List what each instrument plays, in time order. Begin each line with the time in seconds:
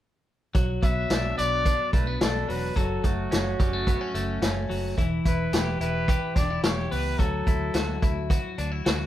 0.55 fingered electric bass B1, clean electric guitar F#3, kick, closed hi-hat
0.82 fingered electric bass B1, clean electric guitar B3, trumpet E5, kick, closed hi-hat
1.10 fingered electric bass B1, clean electric guitar D4, snare, closed hi-hat
1.38 fingered electric bass B1, clean electric guitar B3, trumpet D5, closed hi-hat
1.65 clean electric guitar D4, kick, closed hi-hat
1.93 fingered electric bass B1, clean electric guitar A3, trumpet B4, kick, closed hi-hat
2.07 clean electric guitar B3
2.21 fingered electric bass B1, clean electric guitar D4, trumpet A4, snare, closed hi-hat
2.48 fingered electric bass E1, clean electric guitar F#3, trumpet B4, open hi-hat
2.76 fingered electric bass F#1, clean electric guitar F#3, trumpet A4, kick, closed hi-hat
3.04 fingered electric bass F#1, clean electric guitar A3, trumpet F#4, kick, closed hi-hat
3.31 fingered electric bass F#1, clean electric guitar C#4, snare, closed hi-hat
3.59 fingered electric bass F#1, clean electric guitar G3, kick, closed hi-hat
3.73 clean electric guitar A3
3.87 clean electric guitar B3, kick, closed hi-hat
4.01 clean electric guitar C#4
4.14 fingered electric bass F#1, clean electric guitar A3, closed hi-hat
4.42 fingered electric bass F#1, clean electric guitar C#4, snare, closed hi-hat
4.70 fingered electric bass F#1, clean electric guitar F#3, open hi-hat
4.97 fingered electric bass E1, clean electric guitar E3, kick, closed hi-hat
5.25 fingered electric bass E1, clean electric guitar E4, trumpet B4, kick, closed hi-hat
5.52 fingered electric bass E1, clean electric guitar G4, snare, closed hi-hat
5.81 fingered electric bass E1, clean electric guitar E4, trumpet B4, closed hi-hat
6.08 clean electric guitar G4, kick, closed hi-hat
6.36 fingered electric bass E1, clean electric guitar D4, trumpet D5, kick, snare, closed hi-hat
6.50 clean electric guitar E4
6.63 fingered electric bass E1, clean electric guitar G4, trumpet C#5, snare, closed hi-hat
6.91 fingered electric bass C#2, clean electric guitar B3, trumpet B4, open hi-hat
7.19 fingered electric bass D2, clean electric guitar F#3, trumpet A4, kick, closed hi-hat
7.47 fingered electric bass D2, clean electric guitar E4, kick, closed hi-hat
7.74 fingered electric bass D2, clean electric guitar F#4, snare, closed hi-hat
8.02 fingered electric bass D2, clean electric guitar E4, kick, closed hi-hat
8.30 clean electric guitar F#4, kick, closed hi-hat
8.58 fingered electric bass D2, clean electric guitar D4, closed hi-hat
8.72 clean electric guitar E4
8.86 fingered electric bass D2, clean electric guitar F#4, snare, closed hi-hat